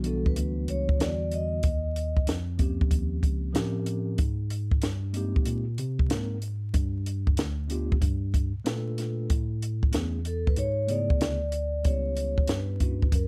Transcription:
Already playing: tine electric piano B1
0.03 tine electric piano E3 G3 B3 D4 F#4, vibraphone A4, closed hi-hat
0.26 vibraphone B4, kick
0.36 tine electric piano D2, closed hi-hat
0.68 tine electric piano C#2, vibraphone C#5, closed hi-hat
0.89 kick
0.98 tine electric piano E2 D3 E3 G3 B3 F#4, vibraphone D5, snare, closed hi-hat
1.32 vibraphone D#5, closed hi-hat
1.63 tine electric piano D#2, kick, closed hi-hat
1.96 closed hi-hat
2.17 kick
2.27 tine electric piano F2, snare, closed hi-hat
2.58 tine electric piano F3 A#3 C4 C#4 G4, kick, closed hi-hat
2.81 kick
2.91 tine electric piano D#2, kick, closed hi-hat
3.23 tine electric piano C#2, kick, closed hi-hat
3.53 tine electric piano A2 F3 C4 C#4 G4 A#4, snare, closed hi-hat
3.86 closed hi-hat
4.18 tine electric piano G#2, kick, closed hi-hat
4.50 closed hi-hat
4.71 kick
4.82 tine electric piano G2, snare, closed hi-hat
5.13 tine electric piano G#3 A#3 C4 D#4 G4, closed hi-hat
5.36 tine electric piano A#2, kick
5.46 tine electric piano A#2, closed hi-hat
5.78 tine electric piano C3, closed hi-hat
5.99 kick
6.08 tine electric piano G#2 G#3 A#3 C4 D#4 A#4, snare, closed hi-hat
6.42 closed hi-hat
6.74 tine electric piano G2, kick, closed hi-hat
7.06 closed hi-hat
7.27 kick
7.37 tine electric piano D2, snare, closed hi-hat
7.68 tine electric piano A3 B3 D4 F4 G4, closed hi-hat
7.92 kick
8.02 tine electric piano G2, kick, closed hi-hat
8.34 kick, closed hi-hat
8.55 tine electric piano A#2
8.64 tine electric piano A#2 A3 D4 F4 A4 B4, snare, closed hi-hat
8.98 snare, closed hi-hat
9.30 tine electric piano A2, kick, closed hi-hat
9.62 closed hi-hat
9.83 kick
9.92 tine electric piano E2 A3 B3 C#4 E4 G#4, snare, closed hi-hat
10.25 vibraphone A4, closed hi-hat
10.47 vibraphone B4, kick
10.56 tine electric piano G#2, vibraphone C#5, closed hi-hat
10.87 tine electric piano C#3 A3 B3 E4 G#4, vibraphone D5, closed hi-hat
11.10 kick
11.21 tine electric piano D2, snare, closed hi-hat
11.52 closed hi-hat
11.83 tine electric piano C#2 G3 B3 C#4 E4, vibraphone C#5, kick, closed hi-hat
11.87 tine electric piano G4
12.17 closed hi-hat
12.38 kick
12.48 tine electric piano G2, vibraphone B4, snare, closed hi-hat
12.80 tine electric piano A#3 C#4 D4 E4 F#4, kick, closed hi-hat
13.02 kick
13.12 tine electric piano F#2, vibraphone A#4, kick, closed hi-hat

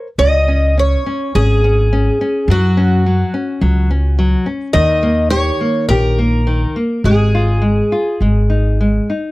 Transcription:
0.18 upright bass C#2, nylon-string guitar C#4, twelve-string acoustic guitar D#5
0.48 nylon-string guitar C#4
0.78 nylon-string guitar C#4, twelve-string acoustic guitar C#5
1.06 nylon-string guitar C#4
1.35 upright bass G#1, nylon-string guitar C#4, twelve-string acoustic guitar G#4
1.64 nylon-string guitar C#4
1.93 nylon-string guitar C#4
2.21 nylon-string guitar C#4
2.48 upright bass F#2, nylon-string guitar F#3, twelve-string acoustic guitar F#4
2.77 nylon-string guitar C#4
3.06 nylon-string guitar F#3
3.34 nylon-string guitar C#4
3.61 upright bass C#2, nylon-string guitar F#3
3.91 nylon-string guitar C#4
4.19 nylon-string guitar F#3
4.46 nylon-string guitar C#4
4.73 upright bass D#2, nylon-string guitar D#3, twelve-string acoustic guitar D#5
5.03 nylon-string guitar A#3
5.30 nylon-string guitar G4, twelve-string acoustic guitar C#5
5.61 nylon-string guitar A#3
5.89 upright bass A#1, nylon-string guitar G4, twelve-string acoustic guitar A#4
6.19 nylon-string guitar A#3
6.47 nylon-string guitar D#3
6.76 nylon-string guitar A#3
7.04 upright bass G#1, nylon-string guitar G#3, twelve-string acoustic guitar G#4
7.35 nylon-string guitar F4
7.62 nylon-string guitar G#3
7.92 nylon-string guitar F4
8.21 upright bass G#1, nylon-string guitar G#3
8.50 nylon-string guitar D#4
8.81 nylon-string guitar G#3
9.10 nylon-string guitar D#4

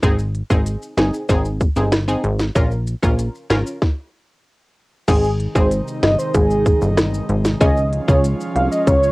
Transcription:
0.02 analog synth bass G#1, synth stab C4 D#4 G#4, kick, closed hi-hat, maracas
0.19 maracas
0.35 closed hi-hat
0.50 analog synth bass G#1, synth stab C4 D#4 G#4, kick, maracas
0.66 closed hi-hat, maracas
0.82 maracas
0.97 analog synth bass G1, synth stab C4 D#4 G#4, cross-stick, snare, closed hi-hat, maracas
1.14 maracas
1.29 analog synth bass G#1, synth stab C4 D#4 G#4, kick, closed hi-hat, maracas
1.45 maracas
1.61 kick, closed hi-hat, maracas
1.76 analog synth bass G1, synth stab C4 D#4 G#4, maracas
1.92 cross-stick, snare, closed hi-hat, maracas
2.08 synth stab C4 D#4 G#4, maracas
2.24 analog synth bass G#1, closed hi-hat
2.39 snare, maracas
2.55 analog synth bass A#1, synth stab C#4 F4 A#4, kick, closed hi-hat, maracas
2.71 maracas
2.87 closed hi-hat, maracas
3.03 analog synth bass A#1, synth stab C#4 F4 A#4, kick, maracas
3.19 closed hi-hat, maracas
3.35 maracas
3.50 analog synth bass G#1, synth stab C#4 F4 A#4, cross-stick, snare, closed hi-hat, maracas
3.67 maracas
3.82 kick, snare
5.08 analog synth bass G#1, analog synth pad C3 D#3 G#3 D#4, synth stab C4 D#4 G#4, soft synth lead G#4, kick, closed hi-hat, crash, maracas
5.24 maracas
5.40 closed hi-hat
5.55 analog synth bass G#1, synth stab C4 D#4 G#4, soft synth lead C5, kick, maracas
5.71 closed hi-hat, maracas
5.88 maracas
6.03 analog synth bass G1, soft synth lead D#5, cross-stick, snare, closed hi-hat
6.19 soft synth lead C5, maracas
6.34 analog synth bass G#1, soft synth lead G#4, kick, closed hi-hat, maracas
6.51 maracas
6.66 kick, closed hi-hat, maracas
6.82 analog synth bass G1, maracas
6.97 cross-stick, snare, closed hi-hat, maracas
7.14 maracas
7.29 analog synth bass G#1, closed hi-hat
7.45 snare, maracas
7.60 analog synth bass C#2, analog synth pad F3 C#4 F4, synth stab C#4 F4 G#4, soft synth lead D#5, kick, closed hi-hat, maracas
7.77 maracas
7.93 closed hi-hat
8.08 analog synth bass C#2, synth stab C#4 F4 G#4, soft synth lead C#5, kick, maracas
8.24 closed hi-hat, maracas
8.41 maracas
8.55 analog synth bass C2, soft synth lead F5, closed hi-hat
8.71 soft synth lead D#5, maracas
8.87 analog synth bass C#2, soft synth lead C#5, kick, closed hi-hat, maracas
9.03 maracas

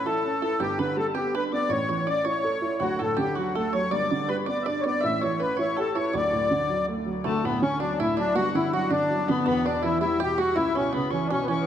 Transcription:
Already playing: upright piano A1 A2
0.06 upright piano E4, five-string banjo A4, accordion A4, tin whistle A5
0.25 upright piano C#4
0.42 upright piano E4, five-string banjo A4, accordion A4, tin whistle A5
0.60 upright piano G1 G2, five-string banjo G4, accordion G4, tin whistle G5
0.79 upright piano D3, five-string banjo B4, accordion B4, tin whistle B5
0.97 upright piano G3, accordion A4, tin whistle A5
1.14 upright piano B3, five-string banjo G4, accordion G4, tin whistle G5
1.34 upright piano D4, five-string banjo B4, accordion B4, tin whistle B5
1.52 upright piano B3, accordion D5, tin whistle D6
1.63 tin whistle D6
1.69 upright piano A1 A2, five-string banjo C#5, accordion C#5, tin whistle C#6
1.89 upright piano E3, five-string banjo C#5, accordion C#5
2.07 upright piano C#4, five-string banjo D5, accordion D5, tin whistle D6
2.25 upright piano E4, five-string banjo C#5, tin whistle C#6
2.29 accordion C#5
2.44 upright piano A4
2.62 upright piano E4
2.80 upright piano D1 D2, five-string banjo F#4, accordion F#4, tin whistle F#5
2.99 upright piano A2, five-string banjo A4, accordion A4, tin whistle A5
3.17 upright piano D3, five-string banjo G4, accordion G4, tin whistle G5
3.35 upright piano F#3, five-string banjo F#4, accordion F#4, tin whistle F#5
3.55 upright piano A3, five-string banjo A4, accordion A4
3.73 upright piano F#3, five-string banjo C#5, accordion C#5, tin whistle C#6
3.91 upright piano G1 G2, five-string banjo D5, accordion D5, tin whistle D6
4.10 upright piano D3, five-string banjo D5, accordion D5
4.28 upright piano G3, five-string banjo B4, accordion B4, tin whistle B5
4.46 upright piano B3, five-string banjo D5, accordion D5, tin whistle D6
4.62 five-string banjo D5, accordion E5
4.66 upright piano D4, accordion D5, tin whistle D6
4.81 accordion C#5, five-string banjo D5
4.86 upright piano B3, accordion D5
5.01 upright piano A1 A2, five-string banjo E5, accordion E5, tin whistle E6
5.21 upright piano E3, five-string banjo C#5, accordion C#5, tin whistle C#6
5.40 upright piano C#4, five-string banjo B4, accordion B4, tin whistle B5
5.57 upright piano E4, five-string banjo C#5, accordion C#5, tin whistle C#6
5.77 upright piano G4, five-string banjo A4, accordion A4, tin whistle A5
5.95 upright piano E4, five-string banjo C#5, accordion C#5, tin whistle C#6
6.13 upright piano D1 D2, five-string banjo D5, accordion D5, tin whistle D6
6.32 upright piano A2
6.50 upright piano D3
6.69 upright piano F#3
6.88 upright piano A3
7.06 upright piano F#3
7.24 upright piano D1 D2, five-string banjo A3, accordion A3, tin whistle A5
7.44 upright piano A2, five-string banjo B3, accordion B3, tin whistle B5
7.62 upright piano D3, accordion C#4, five-string banjo C#4, tin whistle C#6
7.80 upright piano F#3, five-string banjo D4, accordion D4, tin whistle D5
7.99 upright piano A2, five-string banjo E4, accordion E4, tin whistle E5
8.17 upright piano F#3, five-string banjo D4, accordion D4
8.35 upright piano G1 G2, five-string banjo F#4, accordion F#4, tin whistle F#5
8.55 upright piano D3, five-string banjo E4, accordion E4
8.72 upright piano F#3, five-string banjo F#4, accordion F#4, tin whistle F#5
8.90 upright piano D3, five-string banjo D4, accordion D4, tin whistle D5
9.10 upright piano F#3
9.28 upright piano D3, five-string banjo B3, accordion B3, tin whistle B5
9.43 upright piano E1 E2, five-string banjo B3, accordion B3, tin whistle A5
9.48 tin whistle B5
9.65 upright piano B2, accordion D4, five-string banjo D4, tin whistle D5
9.82 upright piano E3, five-string banjo E4, accordion E4, tin whistle E5
10.00 upright piano G3, accordion E4, five-string banjo E4, tin whistle E5
10.20 upright piano B2, five-string banjo G4, accordion G4, tin whistle G5
10.38 upright piano G3, five-string banjo F#4, accordion F#4, tin whistle F#5
10.56 upright piano C#2, five-string banjo E4, accordion E4, tin whistle E5
10.75 upright piano B2, five-string banjo C#4, accordion C#4, tin whistle C#6
10.93 upright piano C#3, five-string banjo B3, accordion B3, tin whistle B5
11.10 upright piano E3, five-string banjo C#4, accordion C#4, tin whistle C#6
11.26 accordion D4
11.30 upright piano B2, five-string banjo C#4, accordion C#4, tin whistle C#6
11.43 accordion B3
11.48 upright piano E3, five-string banjo C#4, accordion C#4, tin whistle C#6
11.61 accordion B3

